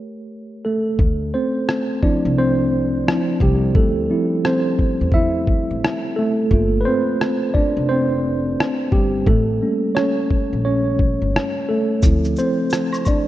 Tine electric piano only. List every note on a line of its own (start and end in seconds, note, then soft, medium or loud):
0.00 0.65 A3 medium
0.00 0.95 G4 medium
0.00 0.97 A#4 medium
0.00 0.99 C#5 medium
0.65 1.30 A3 medium
0.65 1.36 A4 medium
1.34 1.99 C4 medium
1.34 2.05 C5 medium
2.02 2.52 F3 medium
2.02 2.38 C4 soft
2.02 2.35 D4 medium
2.02 2.53 E4 medium
2.02 2.38 D5 medium
2.38 3.06 C4 medium
2.38 3.44 C5 loud
3.07 3.38 F3 soft
3.07 3.38 C4 soft
3.07 3.38 E4 medium
3.42 3.74 G3 medium
3.42 3.77 G4 medium
3.76 4.41 A3 medium
3.76 4.46 A4 medium
4.10 4.59 F3 soft
4.10 4.45 C4 soft
4.10 4.60 E4 medium
4.46 5.10 C4 medium
4.46 5.16 C5 medium
5.14 5.79 E4 medium
5.14 5.78 E5 loud
6.16 6.50 A3 medium
6.16 6.82 A4 medium
6.52 7.51 A3 medium
6.52 7.51 A#3 soft
6.52 7.51 F4 medium
6.81 6.86 B4 medium
6.85 7.51 C4 medium
6.85 7.56 C5 loud
7.54 7.87 D4 medium
7.54 7.86 D5 medium
7.89 8.90 C4 medium
7.89 8.95 C5 loud
8.92 9.26 G3 medium
8.92 9.28 G4 medium
9.27 9.93 A3 medium
9.27 9.92 A4 medium
9.61 11.99 G3 medium
9.61 11.99 A#3 soft
9.61 9.96 C#4 medium
9.95 10.61 C#4 medium
9.95 10.64 C#5 medium
10.65 11.30 C#4 medium
10.65 11.30 C#5 medium
11.69 12.34 A3 medium
11.69 12.39 A4 medium
12.04 12.53 F3 soft
12.04 12.39 C4 soft
12.04 12.54 E4 medium
12.39 13.03 C4 medium
12.39 13.09 C5 medium
13.08 13.28 D4 medium
13.08 13.28 D5 medium